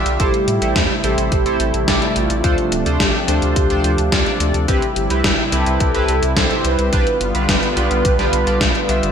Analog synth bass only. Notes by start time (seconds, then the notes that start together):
0.06 B1
0.20 A1
0.48 A2
0.62 A1
0.76 E2
1.04 A1
1.18 A1
1.32 A1
1.46 A1
1.60 A1
1.74 A1
1.88 A1
2.16 A1
2.30 A1
2.44 D2
2.72 D1
2.86 D2
3.00 A1
3.28 D2
3.42 D2
3.56 D2
3.70 D2
3.84 D2
3.98 D2
4.12 D2
4.40 D2
4.54 D2
4.68 C2
4.96 G1
5.11 C2
5.24 G1
5.52 C2
5.66 C2
5.80 C2
5.95 C2
6.08 C2
6.23 C2
6.37 C2
6.65 C2
6.79 C2
6.93 B1
7.21 G1
7.35 B1
7.49 G1
7.77 B1
7.91 B1
8.05 B1
8.19 B1
8.33 B1
8.47 B1
8.61 B1
8.89 B1
9.03 G1